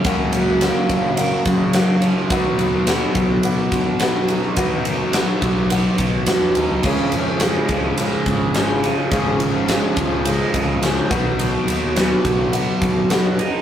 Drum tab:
CC |--------|--------|--------|x-------|
RD |xxxxxxxx|xxxxxxxx|xxxxxxxx|-xxxxxxx|
SD |--o---o-|--o---o-|--o---o-|--o---oo|
BD |o--o-o--|o--o-o--|o--o-o--|o--o-o--|

CC |--------|--------|
RD |xxxxxxxx|xxxxxxxx|
SD |--o---o-|--o---o-|
BD |o--o-o-o|---o-o--|